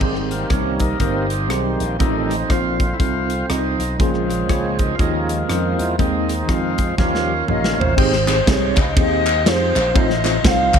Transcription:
0.00 slap bass G#1, tine electric piano G#2 C4 D#4 G4 G#4, tonewheel organ D#3 G3 C4, french horn section C4 C5, kick, crash
0.16 cross-stick
0.30 tonewheel organ C3 G3 A#3, closed hi-hat
0.49 slap bass C2, tine electric piano C4 D#4 G4 A#4, tonewheel organ C#4, kick, cross-stick, closed hi-hat
0.80 tonewheel organ D#4, kick, closed hi-hat
0.99 slap bass G1, tonewheel organ C3 G3 A#3 C4 D#4, tine electric piano C4 D#4 G4 A#4, kick, closed hi-hat
1.30 closed hi-hat
1.49 slap bass B1, tonewheel organ D#3 G3 C4, tine electric piano C4 D#4 G4 G#4, cross-stick, closed hi-hat
1.80 slap bass A#1, closed hi-hat
1.99 slap bass A1, tine electric piano A2 C4 D#4 F4 A4, tonewheel organ D#3 G3 A3 C4 D#4, french horn section D#4 F4 A4, kick, closed hi-hat
2.30 cross-stick, closed hi-hat
2.49 slap bass A#1, tine electric piano C4 D#4 F4 C5, tonewheel organ C4 F4, kick, cross-stick, closed hi-hat
2.80 kick, closed hi-hat
2.93 tonewheel organ E4
2.99 slap bass C2, tine electric piano C4 D#4 F4 A4, tonewheel organ C4 F4, kick, closed hi-hat
3.30 closed hi-hat
3.49 slap bass C2, tine electric piano C4 D#4 F4 C5, tonewheel organ C4 D#4, cross-stick, closed hi-hat
3.79 slap bass B1, closed hi-hat
3.98 slap bass A#1, tine electric piano A#2 A#3 C#4 F4 G#4, tonewheel organ C#3 F3 G#3 C4, french horn section C#3 F4 G#4 A#4, kick, closed hi-hat
4.14 cross-stick
4.30 cross-stick, closed hi-hat
4.48 slap bass C#2, tine electric piano A#3 C#4 F4 G#4, tonewheel organ C#4, kick, cross-stick, closed hi-hat
4.79 tonewheel organ D#4, kick, closed hi-hat
4.95 tine electric piano C#4 D#4, tonewheel organ F4
4.99 slap bass D#2, tine electric piano D#3 F4 G#4, tonewheel organ F3 G#3 A#3 C#4 D#4, french horn section D#4 D#5, kick, closed hi-hat
5.29 tonewheel organ C#4, closed hi-hat
5.48 slap bass F2, tonewheel organ F3 G#3 C4, tine electric piano C#4 D#4 F4 A#4, cross-stick, closed hi-hat
5.79 slap bass E2, closed hi-hat
5.98 slap bass D#2, tonewheel organ D#3 G#3 C4 D#4, tine electric piano D#3 G#3 C4 D#4 G#4, french horn section C4 C5, kick, closed hi-hat
6.29 cross-stick, closed hi-hat
6.48 slap bass F2, tine electric piano G#3 C4 D#4 F4, tonewheel organ G#3 C4 F4, kick, cross-stick, closed hi-hat
6.78 kick, closed hi-hat
6.97 slap bass D#2, tine electric piano D#3 A#3 C#4 D#4 G4, tonewheel organ F3 G3 A#3 C#4 F4, french horn section C#4 G4 A#4, kick, snare
7.15 snare
7.48 slap bass A#1, tine electric piano A#3 C#4 D#4 G4, tonewheel organ A#3 C#4 F4, recorder D#5, mid tom
7.64 snare
7.78 slap bass A1, recorder C5, floor tom
7.97 slap bass G#1, tine electric piano G#2 C4 D#4 G4 G#4 C5, tonewheel organ G#3 C4 D#4 G4 C5, kick, crash
8.13 snare
8.26 tine electric piano C4 D#4 G4 G#4 C5, snare, clap, ride bell
8.47 slap bass C2, tine electric piano C4 D#4 G4 G#4 C5, recorder C#5, kick, snare, ride bell
8.77 slap bass C#2, recorder D#5, kick, clap, ride bell
8.97 slap bass D#2, tine electric piano C4 D#4 G4 G#4 C5, recorder D#5, kick, ride bell
9.26 clap, ride bell
9.45 slap bass F2, tine electric piano C4 D#4 G4 G#4 C5, recorder C#5, snare, ride bell
9.51 recorder C5
9.76 slap bass A#1, clap, ride bell
9.94 slap bass A1, tine electric piano A2 C4 D#4 F4 A4 C5, tonewheel organ A3 C4 D#4 F4 C5, recorder D#5, kick, ride bell
10.10 snare
10.24 tine electric piano C4 D#4 F4 A4 C5, snare, clap, ride bell
10.44 slap bass C2, tine electric piano C4 D#4 F4 A4 C5, recorder F#5, kick, snare, ride bell
10.49 recorder F5
10.74 slap bass C#2, kick, clap, ride bell

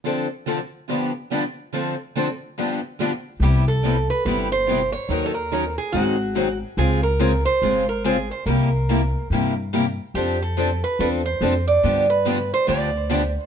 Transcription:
0.05 steel-string acoustic guitar D3 F3 C4 D4 A4
0.47 steel-string acoustic guitar D3 F3 C4 D4 A4
0.89 steel-string acoustic guitar G2 D3 F3 B3 D4 G4
1.31 steel-string acoustic guitar G2 D3 F3 B3 D4 G4
1.73 steel-string acoustic guitar D3 F3 C4 D4 A4
2.16 steel-string acoustic guitar D3 F3 C4 D4 A4
2.58 steel-string acoustic guitar G2 D3 F3 B3 D4 G4
3.00 steel-string acoustic guitar G2 D3 F3 B3 D4 G4
3.40 upright bass C2, steel-string acoustic guitar C3 G3 B3 G4
3.44 steel-string acoustic guitar E4 G4
3.68 steel-string acoustic guitar A4
3.85 steel-string acoustic guitar C3 G3 B3 E4 G4
4.10 steel-string acoustic guitar B4
4.25 upright bass G1, steel-string acoustic guitar C3 G3 B3 E4 G4 B4
4.52 steel-string acoustic guitar C5
4.69 steel-string acoustic guitar C3 G3 B3 E4 G4
4.92 steel-string acoustic guitar C#5
5.09 upright bass D#2, steel-string acoustic guitar D#3 F#3 C#4 D#4 A#4
5.26 steel-string acoustic guitar A4
5.34 steel-string acoustic guitar A#4
5.52 steel-string acoustic guitar D#3 F#3 C#4 D#4 A#4
5.78 steel-string acoustic guitar G#4
5.92 upright bass G#1, steel-string acoustic guitar D#3 F#3 C4 D#4 F#4 G#4
6.35 steel-string acoustic guitar D#3 F#3 C4 D#4 G#4
6.77 upright bass C#2, steel-string acoustic guitar C#3 G#3 C4 F4 G#4
7.03 steel-string acoustic guitar A#4
7.19 steel-string acoustic guitar C#3 G#3 C4 F4 G#4
7.45 steel-string acoustic guitar C5
7.62 upright bass G#1, steel-string acoustic guitar C#3 G#3 C4 F4 G#4
7.89 steel-string acoustic guitar A#4
8.04 steel-string acoustic guitar C#3 G#3 C4 F4 G#4
8.31 steel-string acoustic guitar C5
8.46 upright bass C2, steel-string acoustic guitar C3 G3 A#3 E4 G4 A#4
8.89 steel-string acoustic guitar C3 G3 A#3 E4 G4
9.30 upright bass G2, steel-string acoustic guitar C3 G3 A#3 E4 G4
9.73 steel-string acoustic guitar C3 G3 A#3 E4 G4
10.14 upright bass F2, steel-string acoustic guitar F3 C4 D4 G4 A4
10.42 steel-string acoustic guitar A4
10.57 steel-string acoustic guitar F3 C4 D4 A4
10.84 steel-string acoustic guitar B4
10.99 upright bass E2, steel-string acoustic guitar F3 C4 D4 A4 B4
11.26 steel-string acoustic guitar C5
11.41 upright bass F2, steel-string acoustic guitar F3 C4 D4 A4
11.68 steel-string acoustic guitar D5
11.83 upright bass G2, steel-string acoustic guitar D3 F3 B3 D4 G4
12.10 steel-string acoustic guitar B4
12.25 steel-string acoustic guitar D3 F3 B3 D4 G4
12.54 steel-string acoustic guitar C5
12.67 upright bass D2, steel-string acoustic guitar D3 F3 B3 D4 G4 D5
13.10 steel-string acoustic guitar D3 F3 B3 D4 G4
13.17 steel-string acoustic guitar C5

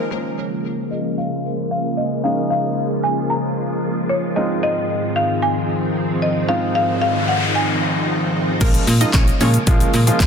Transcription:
Already playing: marimba C5
0.11 string machine C#3 F3 G#3 A#3 F4, grand piano G#3 A#3 C#4 F4, marimba C#5
0.38 marimba C#5
0.91 marimba D#5
1.18 marimba F5
1.71 marimba F5
1.97 marimba D#5
2.24 grand piano G#3 A#3 C#4 D#4, marimba F5
2.50 marimba F5
3.03 marimba G#5
3.30 marimba A#5
4.09 marimba C#5
4.36 string machine G#2 D#3 C4, grand piano G#3 C4 D#4 F4, marimba D#5
4.63 marimba D#5
5.16 marimba F5
5.42 marimba G#5
6.22 marimba D#5
6.48 grand piano G#3 C4 D#4 F4, string machine D#4, marimba F5, noise sweep
6.75 marimba F5
7.01 marimba F5
7.28 marimba F#5
7.55 marimba G#5
8.61 fm bass A#1, string machine C#3 F3 G#3 A#3 F4, grand piano F3 G#3 A#3 C#4 F4, synth pluck A#3 A#4, kick, closed hi-hat, crash, shaker
8.74 closed hi-hat, shaker
8.87 fm bass A#2, open hi-hat, shaker
9.01 grand piano F3 G#3 A#3 C#4 F4, synth pluck D#4 D#5, closed hi-hat, shaker
9.14 fm bass A#1, synth pluck C#4 C#5, kick, snare, clap, closed hi-hat, shaker
9.27 closed hi-hat, shaker
9.41 fm bass A#2, grand piano F3 G#3 A#3 C#4 F4, synth pluck C#4 C#5, open hi-hat, shaker
9.54 closed hi-hat, shaker
9.67 fm bass A#1, grand piano F3 G#3 A#3 C#4 F4, kick, closed hi-hat, shaker
9.80 closed hi-hat, shaker
9.94 fm bass A#2, open hi-hat, shaker
10.07 grand piano F3 G#3 A#3 C#4 F4, closed hi-hat, shaker
10.20 fm bass F#1, kick, snare, clap, closed hi-hat, shaker

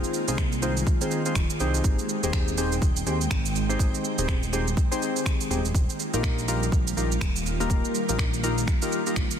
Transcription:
Already playing: ambient pad D#3 G#3 A#3 F4, synth keys C4 D#4 F4 G#4 C5
0.04 cabasa
0.14 cabasa
0.28 analog synth bass C2, synth keys C4 D#4 F4 G#4 C5, cabasa
0.38 finger snap, kick, cabasa
0.52 cabasa
0.62 synth keys C4 D#4 F4 G#4 C5, cabasa
0.77 cabasa
0.87 kick, cabasa
1.01 synth keys C4 D#4 F4 G#4 C5, cabasa
1.11 cabasa
1.26 synth keys C4 D#4 F4 G#4 C5, cabasa
1.35 analog synth bass D#1, finger snap, kick, cabasa
1.50 cabasa
1.60 analog synth bass C2, synth keys C4 D#4 G4 G#4 C5, cabasa
1.74 cabasa
1.84 analog synth bass G#1, ambient pad C4 G5, kick, cabasa
1.99 cabasa
2.09 cabasa
2.23 analog synth bass D#1, synth keys C4 D#4 G4 G#4 C5, cabasa
2.33 finger snap, kick, cabasa
2.48 cabasa
2.58 synth keys C4 D#4 G4 G#4 C5, cabasa
2.72 cabasa
2.82 analog synth bass D#1, kick, cabasa
2.96 cabasa
3.06 analog synth bass D#2, synth keys C4 D#4 G4 G#4 C5, cabasa
3.21 cabasa
3.31 analog synth bass G#1, finger snap, kick, cabasa
3.46 cabasa
3.56 cabasa
3.69 synth keys C4 D#4 G4 G#4 C5, cabasa
3.79 analog synth bass G#1, kick, cabasa
3.94 cabasa
4.04 cabasa
4.18 analog synth bass D#1, synth keys C4 D#4 G4 G#4 C5, cabasa
4.28 finger snap, kick, cabasa
4.43 cabasa
4.53 synth keys C4 D#4 G4 G#4 C5, cabasa
4.68 cabasa
4.77 kick, cabasa
4.91 synth keys C4 D#4 G4 G#4 C5, cabasa
5.02 cabasa
5.16 cabasa
5.26 finger snap, kick, cabasa
5.41 cabasa
5.50 analog synth bass D#1, synth keys C4 D#4 G4 G#4 C5, cabasa
5.65 analog synth bass D#1, cabasa
5.75 analog synth bass D#1, ambient pad D#3 G3 A#3 F4, kick, cabasa
5.90 cabasa
6.00 cabasa
6.14 analog synth bass A#1, synth keys A#3 D#4 F4 G4 A#4, cabasa
6.23 finger snap, kick, cabasa
6.38 cabasa
6.48 synth keys A#3 D#4 F4 G4 A#4, cabasa
6.63 cabasa
6.72 analog synth bass A#1, kick, cabasa
6.87 cabasa
6.97 analog synth bass A#1, synth keys A#3 D#4 F4 G4 A#4, cabasa
7.12 cabasa
7.21 analog synth bass D#1, finger snap, kick, cabasa
7.36 cabasa
7.46 cabasa
7.60 synth keys A#3 D#4 F4 G4 A#4, cabasa
7.70 analog synth bass D#1, kick, cabasa
7.85 cabasa
7.95 cabasa
8.09 analog synth bass A#1, synth keys A#3 D#4 F4 G4 A#4, cabasa
8.19 finger snap, kick, cabasa
8.34 cabasa
8.43 synth keys A#3 D#4 F4 G4 A#4, cabasa
8.58 cabasa
8.68 finger snap, kick, cabasa
8.82 synth keys A#3 D#4 F4 G4 A#4, cabasa
8.92 cabasa
9.07 synth keys A#3 D#4 F4 G4 A#4, cabasa
9.16 analog synth bass A#1, finger snap, kick, cabasa
9.31 cabasa

